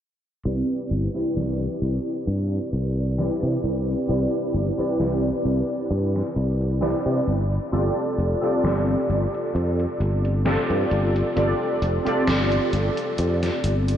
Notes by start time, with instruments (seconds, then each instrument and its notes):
0.45 fretless electric bass C2, synth keys C4 E4 G4 B4 D5, closed hi-hat
0.91 fretless electric bass G1, closed hi-hat
1.14 synth keys C4 E4 G4 B4 D5, closed hi-hat
1.37 fretless electric bass C2, snare, closed hi-hat
1.61 closed hi-hat
1.82 fretless electric bass C2, closed hi-hat
2.07 closed hi-hat
2.27 fretless electric bass G2, closed hi-hat
2.52 closed hi-hat
2.73 fretless electric bass C2, closed hi-hat
2.98 closed hi-hat
3.18 synth keys C4 E4 G4 B4 D5, snare, closed hi-hat
3.43 fretless electric bass C3, closed hi-hat
3.64 fretless electric bass C2, closed hi-hat
3.88 closed hi-hat
4.08 fretless electric bass C2, synth keys C4 E4 G4 B4 D5, closed hi-hat
4.54 fretless electric bass G1, closed hi-hat
4.78 synth keys C4 E4 G4 B4 D5, muted fretless electric bass stroke, closed hi-hat
5.00 fretless electric bass C2, snare, closed hi-hat
5.25 closed hi-hat
5.45 fretless electric bass C2, closed hi-hat
5.70 closed hi-hat
5.91 fretless electric bass G2, closed hi-hat
6.16 snare, closed hi-hat
6.36 fretless electric bass C2, closed hi-hat
6.61 closed hi-hat
6.81 synth keys C4 E4 G4 B4 D5, snare, closed hi-hat
7.06 fretless electric bass C3, closed hi-hat
7.27 fretless electric bass G1, closed hi-hat
7.52 closed hi-hat
7.72 fretless electric bass G1, synth keys C4 F4 G4 A4 D5, closed hi-hat
8.18 fretless electric bass F1, closed hi-hat
8.41 synth keys C4 F4 G4 A4 D5, closed hi-hat
8.64 fretless electric bass G1, snare, closed hi-hat
8.89 closed hi-hat
9.09 fretless electric bass G1, closed hi-hat
9.34 closed hi-hat
9.55 fretless electric bass F2, closed hi-hat
9.80 closed hi-hat
10.00 fretless electric bass G1, closed hi-hat
10.25 closed hi-hat
10.45 synth keys C4 F4 G4 A4 D5, snare, closed hi-hat
10.70 fretless electric bass G2, closed hi-hat
10.91 fretless electric bass G1, closed hi-hat
11.16 closed hi-hat
11.36 fretless electric bass G1, synth keys C4 F4 G4 A4 D5, closed hi-hat
11.82 fretless electric bass F1, closed hi-hat
12.05 synth keys C4 F4 G4 A4 D5, muted fretless electric bass stroke, closed hi-hat
12.27 fretless electric bass G1, snare, closed hi-hat
12.52 closed hi-hat
12.73 fretless electric bass G1, closed hi-hat
12.97 closed hi-hat
13.18 fretless electric bass F2, closed hi-hat
13.43 snare, closed hi-hat
13.64 fretless electric bass G1, closed hi-hat
13.88 closed hi-hat